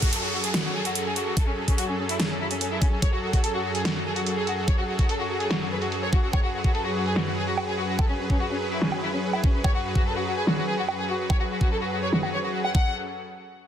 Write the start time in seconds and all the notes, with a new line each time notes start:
Already playing: F#2 F#3 G#4 A4, downlifter
0.02 F#4, kick, closed hi-hat
0.13 A4, closed hi-hat
0.23 F#4
0.33 F#4
0.44 G#4, closed hi-hat
0.54 F#4, snare, closed hi-hat
0.64 F#4
0.75 G#4
0.85 F#4, closed hi-hat
0.95 F#4, closed hi-hat
1.06 G#4
1.16 F#4, closed hi-hat
1.27 F#4
1.37 A4, kick, closed hi-hat
1.47 C#4
1.58 C#4
1.68 C#4, kick, closed hi-hat
1.78 F#4, closed hi-hat
1.89 C#4
1.99 C#4
2.09 E4, closed hi-hat
2.20 C#4, snare, closed hi-hat
2.30 C#4
2.40 E4
2.51 C#4, closed hi-hat
2.61 C#4, closed hi-hat
2.71 E4
2.82 C#4, kick, closed hi-hat
2.92 C#4
3.02 C#5, kick, closed hi-hat
3.13 F#4
3.23 F#4
3.33 F#4, kick, closed hi-hat
3.44 A4, closed hi-hat
3.54 F#4
3.64 F#4
3.75 G#4, closed hi-hat
3.85 F#4, snare, closed hi-hat
3.96 F#4
4.06 G#4
4.16 F#4, closed hi-hat
4.26 F#4, closed hi-hat
4.37 G#4
4.47 F#4, closed hi-hat
4.58 F#4
4.68 C#5, kick, closed hi-hat
4.78 F#4
4.89 F#4
4.99 F#4, kick, closed hi-hat
5.09 A4, closed hi-hat
5.20 F#4
5.30 F#4
5.40 G#4, closed hi-hat
5.51 F#4, snare, closed hi-hat
5.61 F#4
5.71 B4
5.82 F#4, closed hi-hat
5.92 F#4, closed hi-hat
6.02 C#5
6.13 F#4, kick, closed hi-hat
6.23 F#4
6.33 B4 C#5, kick, closed hi-hat, low woodblock
6.44 F#4
6.54 F#4
6.64 F#4, kick, closed hi-hat
6.75 A4, closed hi-hat
6.85 F#4
6.96 F#4
7.06 G#4, closed hi-hat
7.16 F#4, snare, closed hi-hat
7.27 F#4
7.37 G#4
7.47 F#4, closed hi-hat
7.57 F#4, closed hi-hat, low woodblock
7.68 G#4
7.78 F#4, closed hi-hat
7.89 F#4
7.99 A4, kick, closed hi-hat, low woodblock
8.09 C#4
8.20 C#4
8.30 C#4, kick, closed hi-hat
8.40 F#4, closed hi-hat
8.51 C#4
8.61 C#4
8.71 E4, closed hi-hat
8.82 C#4, snare, closed hi-hat
8.92 C#4, low woodblock
9.02 E4
9.13 C#4, closed hi-hat
9.23 C#4, closed hi-hat
9.33 E4, low woodblock
9.44 C#4, kick
9.54 C#4
9.64 C#5, kick, closed hi-hat, low woodblock
9.75 F#4
9.85 F#4
9.95 F#4, kick, closed hi-hat
10.06 A4, closed hi-hat
10.16 F#4
10.27 F#4
10.37 G#4, closed hi-hat
10.47 F#4, snare
10.58 F#4
10.68 G#4
10.78 F#4
10.88 F#4, closed hi-hat, low woodblock
10.99 G#4
11.09 F#4
11.20 F#4
11.30 C#5, kick, low woodblock
11.40 F#4
11.51 F#4
11.61 F#4, kick
11.71 A4, closed hi-hat
11.82 F#4
11.92 F#4
12.02 C#5
12.13 F#4, snare
12.23 F#4, low woodblock
12.34 C#5
12.44 F#4
12.54 F#4
12.64 F#5, low woodblock
12.75 F#3 C#4 G#4 A4 F#5, kick